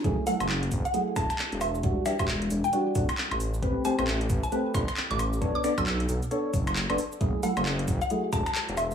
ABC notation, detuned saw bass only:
X:1
M:4/4
L:1/16
Q:"Swing 16ths" 1/4=134
K:F#phr
V:1 name="Detuned saw bass" clef=bass
F,,, z2 F,,,3 F,,, z3 E,,, z2 E,,,3 | E,,, z2 E,,,3 E,,, z3 D,,, z2 A,,,3 | A,,, z2 A,,,3 A,,, z3 G,,, z2 A,,,3 | B,,, z2 B,,,3 B,,, z3 F,,,3 F,,, z2 |
F,,, z2 F,,,3 F,,, z3 E,,, z2 E,,,3 |]